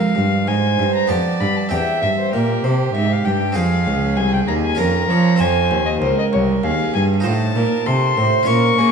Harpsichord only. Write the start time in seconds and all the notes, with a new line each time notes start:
Already playing: F2 G#3 C4 F4
0.15 G2
0.48 G#2
0.79 G2
1.07 F2 B3 G4
1.42 G2
1.69 E2 C4 G4
2.03 G2
2.34 A#2
2.64 C3
2.95 G#2
3.26 G2
3.52 C4 F4 G#4
3.57 F2
3.88 C#2
4.17 C2
4.49 D#2
4.75 C#4 F4 A#4
4.79 F2
5.11 F3
5.36 C4 F4 C5
5.41 F2
5.71 D#2
6.02 C#2
6.33 C2
6.64 D#2
6.94 G2
7.20 D#4 F4 C5
7.25 A2
7.56 A#2
7.86 C3
8.17 A2
8.43 C#4 F4 C#5
8.48 A#2
8.79 A#3